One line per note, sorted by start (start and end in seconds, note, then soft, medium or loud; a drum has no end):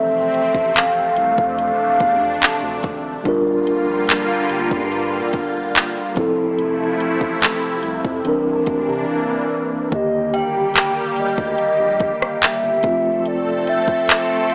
0.00 0.26 F1 loud
0.00 3.22 C3 medium
0.00 2.81 E3 medium
0.00 2.79 F3 medium
0.00 3.22 A3 medium
0.00 1.15 C4 medium
0.00 2.80 C4 medium
0.00 2.81 A4 medium
0.00 0.79 E5 loud
0.34 closed hi-hat medium
0.54 0.89 A1 medium
0.54 kick medium
0.74 1.60 F5 loud
0.74 clap loud
0.74 closed hi-hat medium
1.16 1.34 C2 medium
1.16 3.23 D4 medium
1.16 closed hi-hat medium
1.38 1.72 F2 medium
1.38 kick loud
1.59 2.80 F5 loud
1.59 closed hi-hat medium
2.00 2.17 E2 loud
2.00 kick medium
2.00 closed hi-hat medium
2.21 2.38 F2 loud
2.42 clap loud
2.42 closed hi-hat medium
2.63 2.80 D2 medium
2.83 3.18 G#1 medium
2.83 kick medium
2.83 closed hi-hat medium
3.24 3.59 G1 loud
3.24 6.14 D3 medium
3.24 6.12 G3 medium
3.24 6.14 G3 medium
3.24 6.14 A#3 medium
3.24 6.13 D4 medium
3.24 6.14 F4 medium
3.24 kick loud
3.24 closed hi-hat medium
3.28 6.15 A#4 medium
3.67 closed hi-hat medium
3.88 4.22 A#1 medium
4.07 clap loud
4.07 closed hi-hat medium
4.49 4.73 G1 medium
4.49 closed hi-hat medium
4.71 5.22 G2 medium
4.71 kick loud
4.92 closed hi-hat medium
5.33 5.68 G1 medium
5.33 kick loud
5.33 closed hi-hat medium
5.75 clap loud
5.75 closed hi-hat medium
6.15 6.51 F1 loud
6.15 9.88 C3 medium
6.15 8.21 F3 medium
6.15 8.23 F3 medium
6.15 8.23 A3 medium
6.15 8.21 C4 medium
6.15 8.23 E4 medium
6.15 8.22 E4 medium
6.15 kick loud
6.15 closed hi-hat medium
6.20 8.23 A4 medium
6.59 6.93 F1 loud
6.59 closed hi-hat medium
7.00 closed hi-hat medium
7.21 7.55 A1 medium
7.21 kick medium
7.21 closed hi-hat soft
7.41 clap loud
7.41 closed hi-hat medium
7.83 8.01 C2 medium
7.83 closed hi-hat medium
8.05 8.22 F2 medium
8.05 kick loud
8.24 8.60 C2 medium
8.24 9.88 E3 medium
8.24 9.90 E3 medium
8.24 9.90 A#3 medium
8.24 9.89 C4 medium
8.24 9.90 D4 medium
8.24 closed hi-hat medium
8.29 9.90 A#4 medium
8.66 8.84 D2 medium
8.66 kick medium
8.66 closed hi-hat medium
8.88 9.05 C3 medium
9.91 10.43 D#2 loud
9.91 12.81 D3 medium
9.91 12.79 D#3 medium
9.91 12.81 G3 medium
9.91 12.80 A#3 medium
9.91 12.81 A#3 medium
9.91 12.81 G4 medium
9.91 10.37 D#5 loud
9.91 kick loud
9.91 closed hi-hat medium
9.95 12.81 G4 medium
10.34 12.83 G5 medium
10.34 10.76 G5 loud
10.34 closed hi-hat medium
10.55 10.63 D2 soft
10.74 10.91 G5 loud
10.74 clap loud
10.74 closed hi-hat medium
11.16 11.26 D2 soft
11.16 12.37 D#5 loud
11.16 closed hi-hat medium
11.38 11.55 D2 medium
11.38 kick loud
11.58 11.67 A#1 soft
11.58 closed hi-hat medium
11.80 12.14 A#1 medium
12.00 kick loud
12.00 closed hi-hat medium
12.22 cross-stick medium
12.37 12.45 D#5 medium
12.42 13.29 E5 loud
12.42 clap loud
12.42 closed hi-hat medium
12.63 12.80 G1 medium
12.82 13.18 F1 medium
12.82 14.55 F3 medium
12.82 14.55 A3 medium
12.82 14.55 C4 medium
12.82 14.55 A4 medium
12.82 kick loud
12.82 closed hi-hat medium
12.87 14.55 F4 medium
13.25 13.76 F1 loud
13.25 13.71 D5 loud
13.25 closed hi-hat medium
13.67 14.51 E5 loud
13.67 closed hi-hat medium
13.88 13.96 G1 soft
13.88 kick medium
14.08 clap loud
14.08 closed hi-hat medium
14.50 14.55 G1 soft
14.50 closed hi-hat medium